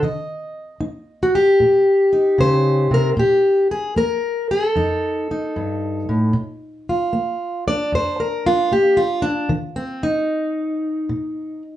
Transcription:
0.03 0.77 D#3 medium
0.03 2.40 D#5 soft
0.81 1.22 D#4 medium
1.23 1.34 F#4 medium
1.35 2.93 G4 medium
1.60 2.34 A#2 medium
2.13 3.15 D#4 soft
2.38 2.91 C#3 medium
2.38 3.19 C5 loud
2.91 3.16 C3 medium
2.91 3.09 A#4 medium
3.17 3.92 A#2 medium
3.17 3.71 G4 medium
3.71 3.97 G#4 medium
3.96 4.71 A#3 medium
3.96 4.51 A#4 medium
4.51 6.35 A4 medium
4.76 5.50 F2 medium
4.76 5.30 D#4 soft
5.31 6.32 D#4 soft
5.56 6.08 G2 medium
6.09 6.35 A2 medium
6.33 7.08 A#2 medium
6.89 7.67 F4 soft
7.13 7.87 A#3 medium
7.68 8.46 D4 soft
7.68 7.94 D5 medium
7.92 8.67 F2 medium
7.92 8.21 C5 medium
8.20 8.46 A#4 medium
8.46 9.21 D4 soft
8.46 8.73 F4 medium
8.72 9.46 A#3 medium
8.72 8.99 G4 medium
8.97 9.24 F4 medium
9.22 9.50 D4 medium
9.49 10.24 D#3 medium
9.76 10.03 C4 medium
10.03 11.62 D#4 medium
11.09 11.77 A#2 medium

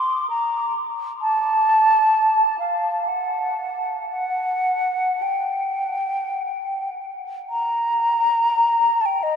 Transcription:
0.00 0.29 C6 medium
0.30 0.75 A#5 medium
1.22 2.56 A5 medium
2.59 3.09 F5 soft
3.08 4.09 F#5 soft
4.10 5.24 F#5 medium
5.22 6.91 G5 soft
7.50 9.02 A#5 medium
9.01 9.07 A5 medium
9.06 9.25 G5 medium
9.23 9.36 D#5 medium

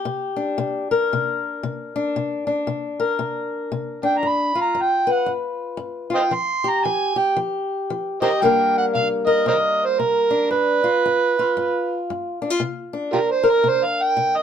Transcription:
0.00 0.91 G4 medium
0.05 0.54 C3 medium
0.36 1.95 D4 medium
0.58 1.07 C3 medium
0.91 2.14 A#4 medium
1.13 1.60 C3 medium
1.63 2.12 C3 medium
1.96 2.46 D4 medium
2.16 2.64 C3 medium
2.47 4.02 D4 medium
2.67 3.16 C3 medium
3.00 4.22 A#4 medium
3.19 3.68 C3 medium
3.72 4.20 C3 medium
4.03 4.55 D4 medium
4.03 4.19 G5 medium
4.17 4.30 A#5 medium
4.23 4.72 G2 medium
4.28 4.61 B5 loud
4.55 6.09 F4 medium
4.61 4.83 A#5 medium
4.75 5.24 G2 medium
4.82 5.13 G5 medium
5.07 6.30 B4 medium
5.12 5.31 F#5 medium
5.26 5.76 G2 medium
5.77 6.27 G2 medium
6.10 6.29 F4 medium
6.15 6.21 C5 medium
6.15 6.23 D#5 medium
6.15 6.36 G5 medium
6.31 6.80 F3 medium
6.31 6.71 C6 medium
6.64 7.16 G4 medium
6.69 6.86 A#5 medium
6.84 7.33 F3 medium
6.84 7.19 G#5 medium
7.16 8.21 G4 medium
7.16 7.38 G5 medium
7.36 7.85 F3 medium
7.90 8.38 F3 medium
8.22 8.45 G4 medium
8.22 8.31 A#4 medium
8.22 8.29 C5 medium
8.22 8.43 D#5 medium
8.41 8.90 C3 medium
8.41 10.87 G3 medium
8.41 10.52 A#3 medium
8.41 8.98 D4 medium
8.41 9.26 A#4 medium
8.41 8.77 G5 loud
8.78 8.86 F#5 medium
8.94 9.43 C3 medium
8.94 9.09 F5 medium
9.27 10.49 A#4 medium
9.27 9.45 D#5 medium
9.46 9.94 C3 medium
9.46 9.56 A#4 medium
9.46 9.54 C5 medium
9.46 9.87 D#5 medium
9.85 10.01 C5 medium
9.99 10.47 C3 medium
9.99 10.51 A#4 medium
10.31 10.83 D4 medium
10.51 10.99 G2 medium
10.51 12.04 B4 medium
10.84 11.36 F4 medium
11.06 11.53 G2 medium
11.39 12.41 F4 medium
11.57 12.05 G2 medium
12.10 12.58 G2 medium
12.42 12.50 D4 medium
12.50 12.61 F4 soft
12.60 13.09 C3 medium
12.93 14.43 D4 medium
13.13 13.61 C3 medium
13.13 13.19 F4 medium
13.13 13.20 G4 medium
13.13 13.33 A#4 medium
13.31 13.52 C5 medium
13.43 14.43 A#4 medium
13.50 13.70 A#4 medium
13.64 14.13 C3 medium
13.69 13.86 C5 medium
13.85 14.04 F5 medium
14.03 14.39 G5 medium
14.17 14.43 C3 medium
14.37 14.43 D#5 medium

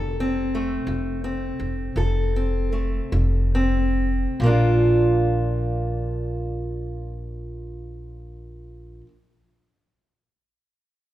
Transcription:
0.00 0.76 F1 medium
0.00 0.47 F2 medium
0.00 1.96 A4 medium
0.20 1.23 C4 medium
0.55 2.71 A3 soft
0.87 1.50 F1 medium
0.87 1.52 F2 medium
1.24 2.34 C4 medium
1.59 1.92 F1 medium
1.96 2.99 F1 medium
1.96 2.65 F2 medium
1.96 4.34 A4 medium
2.36 3.54 C4 medium
2.73 4.34 A3 medium
3.12 4.25 F1 medium
3.12 3.87 F2 medium
3.55 4.40 C4 medium
4.40 9.00 A#1 medium
4.40 9.04 A#2 medium
4.40 9.06 F3 medium
4.40 9.08 A#3 medium
4.46 9.11 D4 medium
4.46 9.12 F4 soft

